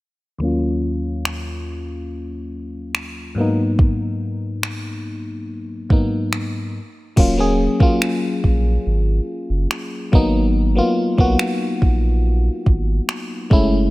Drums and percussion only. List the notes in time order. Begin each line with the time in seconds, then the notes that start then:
1.25 finger snap
2.95 finger snap
3.79 kick
4.63 finger snap
5.90 kick
6.33 finger snap
7.17 kick, crash
7.80 kick
8.02 finger snap
8.44 kick
9.71 finger snap
10.13 kick
11.18 kick
11.39 finger snap
11.82 kick
12.66 kick
13.09 finger snap
13.51 kick